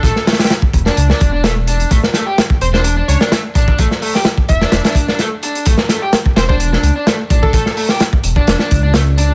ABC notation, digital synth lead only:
X:1
M:4/4
L:1/16
Q:1/4=128
K:C
V:1 name="Digital synth lead"
A3 z12 z | z6 c c z2 ^c z4 z | z6 e4 z6 | z6 c c z6 z A |
A3 z12 z |]